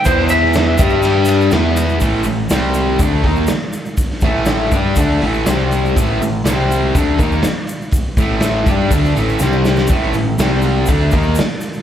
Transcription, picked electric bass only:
0.06 E2
0.79 G2
1.52 E2
2.01 A1
2.26 A1
2.50 C2
3.00 D2
3.24 D#2
4.22 A1
4.72 G2
4.97 D2
5.22 A1
5.47 C2
5.96 A1
6.21 A1
6.44 C2
6.95 D2
7.19 D#2
8.17 A1
8.67 G2
8.91 D2
9.15 A1
9.40 C2
9.90 A1
10.14 A1
10.39 C2
10.88 D2
11.13 D#2

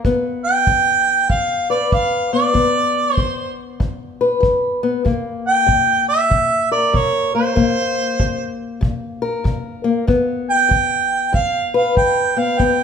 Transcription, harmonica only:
0.45 G5
1.30 F5
1.70 D5
1.93 F5
2.33 D5
3.15 C5
5.48 G5
6.09 E5
6.72 D5
6.95 C#5
7.35 C5
10.50 G5
11.35 F5
11.76 F5
11.97 G5
12.39 F5
12.59 G5

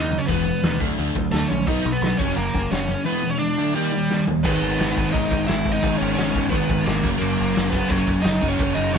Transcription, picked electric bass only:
Already playing: D#2
0.29 E1
0.64 D#2
0.81 D2
0.99 D2
1.16 D2
1.34 D2
1.51 A#1
1.67 B1
1.86 B1
2.02 B1
2.19 F#1
2.36 F#1
2.54 F#1
2.72 F#1
4.45 G#1
4.63 G#1
4.80 G#1
4.97 G#1
5.14 G#1
5.32 G#1
5.50 G#1
5.65 G#1
5.83 G#1
6.03 G#1
6.18 G#1
6.36 G#1
6.52 G#1
6.70 G#1
6.88 G#1
7.04 F#1
7.22 F#1
7.40 F#1
7.57 F#1
7.73 F#1
7.90 F#1
8.08 F#1
8.24 F#1
8.42 F#1
8.59 F#1
8.77 F#1
8.94 F#1

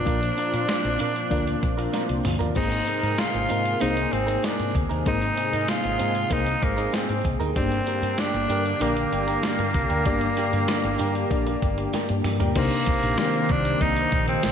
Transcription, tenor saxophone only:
Already playing: D4
2.56 D#4
3.19 F4
3.81 D#4
4.12 C4
4.45 D4
5.08 D#4
5.69 F4
6.33 D#4
6.63 A#3
6.94 C4
7.56 C4
8.20 D4
8.82 A#3
12.58 A#3
13.51 D4
13.82 D#4
14.28 C4

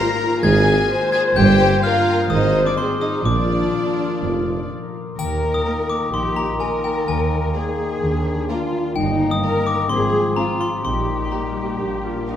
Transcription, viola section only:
Already playing: F4
0.44 G#4
0.90 C5
1.84 A#4
2.30 C5
2.78 G#4
3.26 F4
5.66 A#3
6.61 A#3
7.56 A#3
8.50 A#3
9.43 A#3
10.37 C4
11.32 A#3
11.68 G4
12.03 F4
12.28 D#4

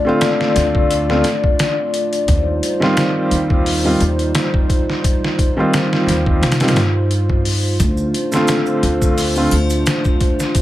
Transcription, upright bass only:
0.56 D2
2.28 D#2
3.31 D#2
4.01 D#2
6.07 D#2
6.41 C3
6.75 G2
7.80 D2
8.83 D2
9.52 D2

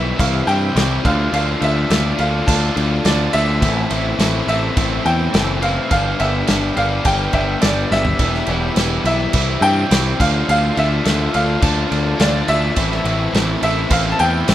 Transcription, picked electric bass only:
Already playing: B1
0.20 C2
0.47 G2
0.76 C2
1.05 D2
1.32 D2
1.62 D2
1.90 D2
2.19 D2
2.48 D2
2.77 D2
3.05 D2
3.34 D2
3.62 A1
3.91 A1
4.19 A1
4.47 A1
4.77 A1
5.06 E2
5.34 F#1
5.91 G1
6.20 G1
6.49 G1
6.77 G1
7.05 G1
7.33 G1
7.63 G1
7.91 G1
8.19 E1
8.48 E1
8.76 E1
9.04 B1
9.34 C2
9.61 G2
9.91 C2
10.20 D2
10.49 D2
10.77 D2
11.06 D2
11.35 D2
11.62 D2
11.92 D2
12.20 D2
12.48 D2
12.77 A1
13.05 A1
13.33 A1
13.62 A1
13.90 A1
14.20 E2
14.48 A1

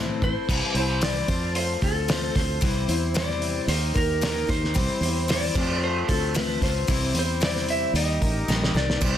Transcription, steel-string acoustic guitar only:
Already playing: A2 E3 A3 C4 E4 C5
0.22 A3 C4 E4 C5
0.49 C3 E3 G3 C4 E4 C5
0.75 G3 C4 E4 C5
1.01 C3 E3 G3 C4 E4 C5
1.28 F3 A3 C4 F4 C5
1.81 C4 F4 C5
2.08 F3 A3 C4 F4 C5
2.35 C4 F4 C5
2.61 C3 E3 G3 C4 E4 C5
2.88 G3 C4 E4 C5
3.14 C3 E3 G3 C4 E4 C5
3.68 A#3 D#4 G4 A#4
3.94 D#4 G4 A#4
4.21 D#3 A#3 D#4 G4 A#4
4.47 D#4 G4 A#4
4.74 C3 E3 G3 C4 E4 C5
5.01 G3 C4 E4 C5
5.28 C3 E3 G3 C4 E4 C5
5.55 F3 A3 C4 F4 C5
6.08 C4 F4 C5
6.34 F3 A3 C4 F4 C5
6.62 C4 F4 C5
6.87 C3 E3 G3 C4 E4 C5
7.13 G3 C4 E4 C5
7.40 C3 E3 G3 C4 E4 C5
7.95 G3 D#4 G4 A#4
8.22 D#4 G4 A#4
8.48 D#3 G3 D#4 G4 A#4
8.74 D#4 G4 A#4
9.01 C3 E3 G3 C4 E4 C5

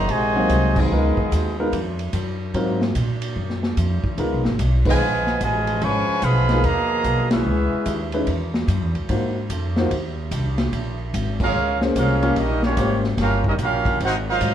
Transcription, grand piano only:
0.35 F#3 A#3 C4 D#4 F5
0.92 G#3 B3 D#4 F4 A#4
1.60 G#3 B3 D#4 F4 A#4
2.54 F#3 C4 D#4 F4 A#4
4.18 G#3 B3 D#4 F4 A#4
4.86 G#3 B3 D#4 F4 B4
6.50 G#3 B3 D#4 F4 A#4
8.13 G#3 C#4 D#4 E4 B4
9.09 A#3 D#4 F4 F#4 C5
9.78 A#3 D#4 F4 F#4 C5
11.81 A#3 C#4 F4 G#4 C5
12.22 A#3 C#4 F4 G4 C#5
12.78 A#3 C#4 F4 G4 C5

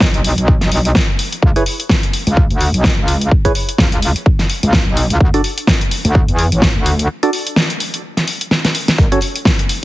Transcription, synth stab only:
1.56 E4 G#4 B4 C#5
3.45 E4 G#4 B4 C#5
5.34 D4 F#4 A4 D5
7.23 D4 F#4 A4 D5
9.12 C#4 F#4 A4 C#5

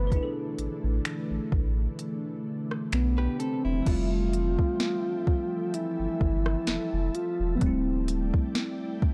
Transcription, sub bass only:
Already playing: G1
0.58 A1
0.84 A1
1.30 A1
1.52 A1
2.93 B1
3.65 E1
3.87 F1
5.99 G1
6.21 G1
6.68 F1
6.93 F1
7.40 E1
7.62 D1

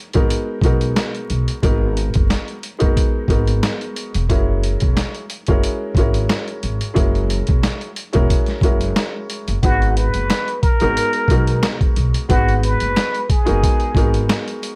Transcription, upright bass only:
0.15 G#1
0.62 B1
1.30 B1
1.63 G#1
2.16 F#1
2.82 F#1
3.28 G#1
4.15 E1
4.30 F#1
4.82 E1
5.49 F#1
5.95 G#1
6.63 G#1
6.96 F#1
7.49 E1
8.15 E1
8.62 F#1
9.48 F#1
9.63 G#1
10.15 F#1
10.82 G#1
11.28 B1
11.97 B1
12.30 G#1
12.82 F#1
13.48 F#1
13.95 G#1

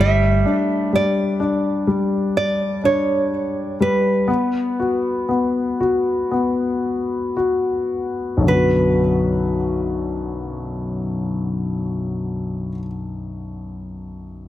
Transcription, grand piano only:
0.00 G3
0.46 D4
0.93 G3
1.40 D4
1.87 G3
2.84 D4
3.80 G3
4.28 B3
4.80 F#4
5.29 B3
5.80 F#4
6.31 B3
7.37 F#4
8.37 B1 F#2
8.44 D3 F#3
8.50 B3 F#4

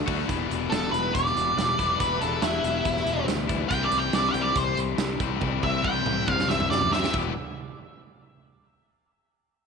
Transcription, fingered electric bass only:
0.08 D2
0.30 E1
0.50 E1
0.71 E1
0.93 E1
1.15 E1
1.36 E1
1.57 E1
1.79 E1
2.01 E1
2.22 E1
2.42 E1
2.64 E1
2.85 E1
3.06 E1
3.27 D2
3.71 C2
3.91 C2
4.13 C2
4.34 C2
4.55 C2
4.77 C2
4.98 C2
5.20 C2
5.42 C2
5.63 C2
5.84 C2
6.05 C2
6.28 C2
6.48 C2
6.70 F#2
7.14 E1

